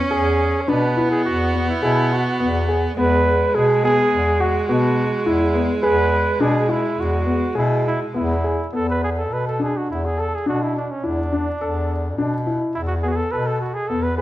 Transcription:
0.00 0.70 C#4 medium
0.11 0.58 E2 medium
0.11 0.63 G#4 medium
0.11 0.40 G#4 medium
0.61 0.70 C#5 medium
0.68 1.16 B2 medium
0.68 2.98 B3 medium
0.68 0.82 D4 medium
0.68 1.10 B4 medium
0.97 1.26 E4 medium
1.11 1.25 G#4 medium
1.25 1.73 E2 medium
1.25 1.65 F#4 medium
1.54 1.68 B3 medium
1.69 1.82 E4 medium
1.83 2.30 B2 medium
1.83 2.15 E4 medium
1.83 2.11 G#4 medium
2.13 2.70 F#4 medium
2.40 2.87 E2 medium
2.40 2.55 B3 medium
2.69 2.83 G#4 medium
2.97 3.45 E2 medium
2.97 8.40 G#3 medium
2.97 3.26 B3 medium
2.97 3.57 B4 loud
3.55 4.02 B2 medium
3.55 3.69 G#4 medium
3.55 3.84 G#4 medium
3.83 4.12 B3 medium
3.83 4.42 G#4 loud
4.12 4.59 E2 medium
4.40 4.55 F#4 medium
4.40 4.68 F#4 medium
4.69 5.16 B2 medium
4.69 4.97 B3 medium
4.69 5.29 F#4 medium
5.26 5.73 E2 medium
5.26 5.40 E4 medium
5.26 5.69 E4 medium
5.54 5.69 B3 medium
5.83 6.30 E2 medium
5.83 6.12 G#4 medium
5.83 6.43 B4 loud
6.40 6.87 B2 medium
6.40 6.55 D4 medium
6.40 6.72 G#4 medium
6.69 6.98 E4 medium
6.69 7.02 E4 medium
6.98 7.45 E2 medium
6.98 7.57 F#4 medium
7.26 7.41 B3 medium
7.55 8.04 B2 medium
7.55 7.84 E4 medium
7.55 7.85 G#4 medium
7.87 8.00 E4 medium
8.14 8.62 E2 medium
8.14 8.29 B3 medium
8.14 8.70 E4 medium
8.44 8.59 G#4 medium
8.73 9.33 E2 medium
8.73 9.02 B3 medium
8.73 8.88 A4 medium
8.90 9.02 B4 medium
9.04 9.10 G#4 medium
9.17 9.35 A4 medium
9.30 9.79 B2 medium
9.30 9.45 A4 medium
9.30 9.47 B4 medium
9.48 9.65 A4 medium
9.60 9.89 D4 medium
9.60 9.79 G#4 medium
9.77 9.90 F#4 medium
9.89 10.36 E2 medium
9.89 10.07 E4 medium
10.05 10.22 G#4 medium
10.17 10.32 A4 medium
10.17 10.37 A4 medium
10.35 10.48 G#4 medium
10.46 10.94 B2 medium
10.46 10.75 D4 medium
10.46 10.64 F#4 medium
10.63 10.76 E4 medium
10.77 10.92 D4 medium
10.91 11.07 C#4 medium
11.04 11.51 E2 medium
11.04 12.50 D4 medium
11.04 11.18 E4 medium
11.32 11.47 D4 medium
11.61 12.20 E2 medium
11.61 11.90 A4 medium
12.18 12.65 B2 medium
12.18 12.33 D4 medium
12.47 12.75 E4 medium
12.75 13.22 E2 medium
12.75 12.81 E4 medium
12.87 12.94 F#4 medium
13.03 13.18 B3 medium
13.03 13.08 G#4 medium
13.07 13.11 F#4 medium
13.07 13.18 G#4 medium
13.16 13.33 A4 medium
13.32 13.79 B2 medium
13.32 13.61 A4 medium
13.32 13.48 B4 medium
13.47 13.60 A4 medium
13.61 13.76 F#4 medium
13.74 13.90 G#4 medium
13.88 14.22 E2 medium
13.88 14.04 B3 medium
13.88 14.04 A4 medium
14.03 14.16 B4 medium
14.17 14.22 G#4 medium
14.17 14.22 B4 medium

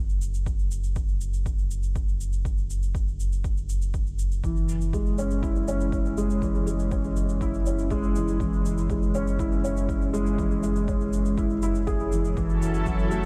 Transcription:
0.00 4.41 F#1 medium
0.09 shaker soft
0.22 shaker medium
0.34 shaker soft
0.46 kick loud
0.46 shaker soft
0.59 shaker soft
0.71 shaker medium
0.84 shaker soft
0.96 kick loud
0.96 shaker soft
1.08 shaker soft
1.21 shaker medium
1.34 shaker soft
1.46 kick loud
1.46 shaker soft
1.58 shaker soft
1.71 shaker medium
1.83 shaker soft
1.96 kick loud
1.96 shaker soft
2.08 shaker soft
2.21 shaker medium
2.33 shaker soft
2.45 kick loud
2.45 shaker soft
2.58 shaker soft
2.70 shaker medium
2.83 shaker soft
2.95 kick loud
2.95 shaker soft
3.08 shaker soft
3.20 shaker medium
3.33 shaker soft
3.44 kick loud
3.44 shaker soft
3.57 shaker soft
3.69 shaker medium
3.82 shaker soft
3.94 kick loud
3.94 shaker soft
4.07 shaker soft
4.19 shaker medium
4.32 shaker soft
4.44 12.35 F#1 medium
4.44 4.68 E3 medium
4.44 kick medium
4.44 shaker soft
4.56 shaker soft
4.69 shaker medium
4.81 shaker soft
4.93 5.08 G#3 medium
4.93 kick loud
4.93 shaker soft
5.06 shaker soft
5.18 5.32 C#4 medium
5.18 shaker medium
5.31 shaker soft
5.42 5.57 E4 medium
5.42 kick loud
5.42 shaker soft
5.56 shaker soft
5.68 5.91 C#4 medium
5.68 shaker medium
5.81 shaker soft
5.92 kick medium
5.92 shaker soft
6.05 shaker soft
6.18 6.41 G#3 medium
6.18 shaker medium
6.30 shaker soft
6.42 6.66 E3 medium
6.42 kick medium
6.42 shaker soft
6.55 shaker soft
6.67 6.81 G#3 medium
6.67 shaker medium
6.80 shaker soft
6.91 7.06 C#4 medium
6.91 kick loud
6.91 shaker soft
7.04 shaker soft
7.16 shaker medium
7.29 shaker soft
7.41 7.56 E4 loud
7.41 kick medium
7.41 shaker soft
7.54 shaker soft
7.66 7.90 C#4 medium
7.66 shaker medium
7.79 shaker soft
7.91 8.15 G#3 loud
7.91 kick medium
7.91 shaker soft
8.03 shaker soft
8.16 8.39 E3 medium
8.16 shaker medium
8.28 shaker soft
8.40 8.64 E3 medium
8.40 kick medium
8.40 shaker soft
8.53 shaker soft
8.65 shaker medium
8.78 shaker soft
8.90 9.05 G#3 medium
8.90 kick loud
8.90 shaker soft
9.02 shaker soft
9.15 9.29 C#4 medium
9.15 shaker medium
9.27 shaker soft
9.39 9.54 E4 loud
9.39 kick medium
9.39 shaker soft
9.52 shaker soft
9.64 9.88 C#4 medium
9.64 shaker medium
9.77 shaker soft
9.89 kick medium
9.89 shaker soft
10.02 shaker soft
10.13 10.37 G#3 loud
10.13 shaker medium
10.26 shaker soft
10.38 10.62 E3 medium
10.38 kick medium
10.38 shaker soft
10.51 shaker soft
10.63 10.78 G#3 medium
10.63 shaker medium
10.76 shaker soft
10.88 11.03 C#4 medium
10.88 kick loud
10.88 shaker soft
11.01 shaker soft
11.13 shaker medium
11.26 shaker soft
11.38 11.52 E4 loud
11.38 kick loud
11.38 shaker soft
11.50 shaker soft
11.62 11.77 E4 medium
11.62 shaker medium
11.75 shaker soft
11.87 12.11 G#4 medium
11.87 kick medium
11.87 shaker soft
12.00 shaker soft
12.12 12.35 E3 medium
12.12 shaker medium
12.25 shaker soft
12.36 13.25 F#1 medium
12.36 12.61 E3 medium
12.36 13.25 F#3 medium
12.36 13.25 C#4 medium
12.36 13.25 E4 medium
12.36 13.25 A4 medium
12.36 kick medium
12.36 shaker soft
12.49 shaker soft
12.62 shaker medium
12.74 shaker soft
12.86 13.01 F#3 medium
12.86 kick loud
12.86 shaker soft
12.99 shaker soft
13.11 13.25 A3 medium
13.11 shaker medium

